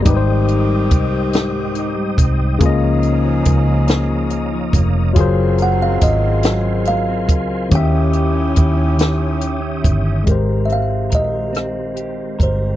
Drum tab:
HH |xxxxxx|xxxxxx|xxxxxx|xxxxxx|
SD |---o--|---o--|---o--|---o--|
BD |o-o--o|o-o--o|o-o--o|o-o--o|

HH |xxxxxx|
SD |---r--|
BD |o-o--o|